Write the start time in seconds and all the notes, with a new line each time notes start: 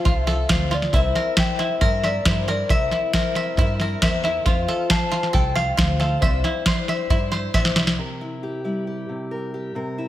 Already playing: A4 F5
0.05 C2 A3 C4 F4 A4, kick, snare
0.20 E5
0.27 C4 F4 A4, snare
0.49 D2 F3 A3 C4 F4 A4 F5, kick, snare
0.71 F4 A4 D5, snare
0.75 C4
0.82 snare
0.93 C2 C3 E3 G3 C4 E4 A#4 E5, kick, snare
1.15 A#4, snare
1.37 C3 E3 G3 C4 E4 E5 G5, kick, snare
1.41 A#4
1.59 E4 E5, snare
1.81 G2 G3 C4 E4 A#4, kick, snare
1.85 A#4
2.04 G3 C4 E4 A#4 D5 E5, snare
2.25 G2 C3 E3 G3 C4 E4 A#4 C5, kick, snare
2.47 G3 C4 E4 A#4 D5, snare
2.69 C2 C3 E3 G3 C4 E4 A#4 E5, kick, snare
2.91 E4, snare
3.13 C3 E3 G3 C4 E4 A#4, kick, snare
3.35 E5, snare
3.57 G2 G3 C4 E4 A#4, kick, snare
3.80 G3 C4 E4 A#4, snare
4.02 E2 C3 E3 G3 C4 E4 A#4 E5, kick, snare
4.23 G3 C4 E4 A#4 E5, snare
4.45 F2 F3 A3 C4 F4 C5 F5, kick, snare
4.68 A4, snare
4.90 F3 A3 C4 F4 C5 F5 A5, kick, snare
5.12 F4, snare
5.23 snare
5.33 C2 A3 C4 F4 A4 G5, kick, snare
5.37 C5
5.55 C4 F4 C5 F5, snare
5.77 D2 F3 A3 C4 F4 C5, kick, snare
6.00 C4 F4 A4 C5 F5, snare
6.21 C2 C3 E3 G3 D4 E4 C5 E5, kick, snare
6.44 E4, snare
6.66 C3 E3 G3 D4 E4 C5, kick, snare
6.88 E5, snare
7.10 G2 G3 D4 E4 C5, kick, snare
7.32 G3 D4 E4 C5, snare
7.54 A#1 C3 E3 G3 D4 E4 C5 E5, kick, snare
7.65 snare
7.76 C2 G3 D4 E4 C5, snare
7.87 snare
7.98 C3 A#4
8.21 E4
8.43 G4
8.64 G3 E4
8.87 G4
9.09 C3
9.31 A#4
9.54 G4
9.75 C3 A#4
9.98 E4